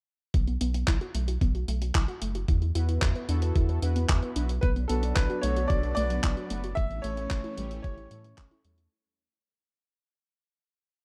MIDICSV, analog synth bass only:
0, 0, Header, 1, 2, 480
1, 0, Start_track
1, 0, Key_signature, 2, "minor"
1, 0, Tempo, 535714
1, 306, Time_signature, 4, 2, 24, 8
1, 9894, End_track
2, 0, Start_track
2, 0, Title_t, "Analog synth bass"
2, 0, Program_c, 0, 38
2, 307, Note_on_c, 0, 35, 99
2, 515, Note_off_c, 0, 35, 0
2, 547, Note_on_c, 0, 35, 94
2, 755, Note_off_c, 0, 35, 0
2, 786, Note_on_c, 0, 35, 90
2, 890, Note_off_c, 0, 35, 0
2, 1027, Note_on_c, 0, 35, 97
2, 1235, Note_off_c, 0, 35, 0
2, 1266, Note_on_c, 0, 35, 84
2, 1474, Note_off_c, 0, 35, 0
2, 1506, Note_on_c, 0, 35, 83
2, 1714, Note_off_c, 0, 35, 0
2, 1746, Note_on_c, 0, 35, 92
2, 1850, Note_off_c, 0, 35, 0
2, 1987, Note_on_c, 0, 30, 86
2, 2195, Note_off_c, 0, 30, 0
2, 2226, Note_on_c, 0, 40, 101
2, 2435, Note_off_c, 0, 40, 0
2, 2466, Note_on_c, 0, 40, 95
2, 2674, Note_off_c, 0, 40, 0
2, 2707, Note_on_c, 0, 40, 92
2, 2811, Note_off_c, 0, 40, 0
2, 2945, Note_on_c, 0, 40, 93
2, 3154, Note_off_c, 0, 40, 0
2, 3187, Note_on_c, 0, 40, 83
2, 3395, Note_off_c, 0, 40, 0
2, 3425, Note_on_c, 0, 40, 87
2, 3634, Note_off_c, 0, 40, 0
2, 3667, Note_on_c, 0, 40, 91
2, 3771, Note_off_c, 0, 40, 0
2, 3907, Note_on_c, 0, 35, 86
2, 4115, Note_off_c, 0, 35, 0
2, 4148, Note_on_c, 0, 35, 97
2, 4355, Note_off_c, 0, 35, 0
2, 4388, Note_on_c, 0, 35, 98
2, 4596, Note_off_c, 0, 35, 0
2, 4628, Note_on_c, 0, 35, 91
2, 4731, Note_off_c, 0, 35, 0
2, 4869, Note_on_c, 0, 35, 96
2, 5076, Note_off_c, 0, 35, 0
2, 5107, Note_on_c, 0, 35, 84
2, 5315, Note_off_c, 0, 35, 0
2, 5349, Note_on_c, 0, 35, 84
2, 5556, Note_off_c, 0, 35, 0
2, 5587, Note_on_c, 0, 35, 91
2, 5691, Note_off_c, 0, 35, 0
2, 5829, Note_on_c, 0, 30, 84
2, 6036, Note_off_c, 0, 30, 0
2, 6068, Note_on_c, 0, 33, 101
2, 6275, Note_off_c, 0, 33, 0
2, 6307, Note_on_c, 0, 33, 95
2, 6515, Note_off_c, 0, 33, 0
2, 6547, Note_on_c, 0, 33, 87
2, 6651, Note_off_c, 0, 33, 0
2, 6789, Note_on_c, 0, 33, 97
2, 6996, Note_off_c, 0, 33, 0
2, 7027, Note_on_c, 0, 33, 84
2, 7235, Note_off_c, 0, 33, 0
2, 7266, Note_on_c, 0, 45, 87
2, 7475, Note_off_c, 0, 45, 0
2, 7506, Note_on_c, 0, 33, 98
2, 7610, Note_off_c, 0, 33, 0
2, 7747, Note_on_c, 0, 40, 99
2, 7955, Note_off_c, 0, 40, 0
2, 9894, End_track
0, 0, End_of_file